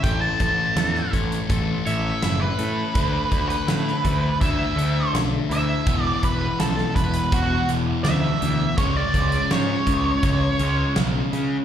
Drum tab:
HH |x-x-x-xxx-x-x-x-|x-xxx-x-x-x-x-x-|x-x-x-xxx-x-x-x-|x-xxx-x-x-x-x-x-|
SD |----oo------o---|----oo------o---|----oo------o---|----o-------o---|
BD |o-o---o-o-------|o-o---o-o-------|o-o---o-o-------|o-o---o-o-------|